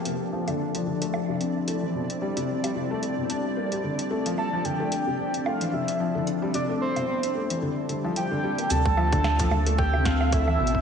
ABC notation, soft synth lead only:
X:1
M:4/4
L:1/8
Q:"Swing 16ths" 1/4=111
K:Dm
V:1 name="Soft synth lead"
z8 | z8 | a g3 f e2 z | d c3 z2 g2 |
a4 g f e2 |]